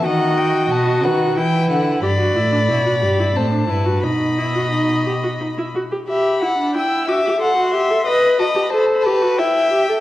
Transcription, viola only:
\new Staff \with { instrumentName = "Viola" } { \time 3/4 \key e \minor \tempo 4 = 90 fis'2 e'4 | g'16 fis'16 e'16 d'16 e'16 fis'16 g'16 e'16 c'16 d'16 e'16 fis'16 | dis'8 e'16 fis'16 dis'8 g'16 fis'16 dis'16 e'16 fis'16 g'16 | g'8 e'16 d'16 e'8 fis'16 g'16 a'16 fis'16 g'16 a'16 |
b'8 fis'16 g'16 a'8 g'16 fis'16 e'8 g'16 a'16 | }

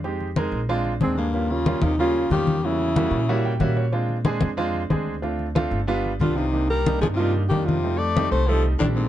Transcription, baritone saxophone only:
\new Staff \with { instrumentName = "Baritone saxophone" } { \clef bass \time 4/4 \key bes \mixolydian \tempo 4 = 185 r2. aes,8 g,8~ | g,8 des4 c8 des4 ees4 | cis2. r4 | r1 |
r2. d8 c8~ | c8 g4 f16. c32 c8 r8 ees8 c8~ | c8 a4 a8 f8 r8 a,8 aes,8 | }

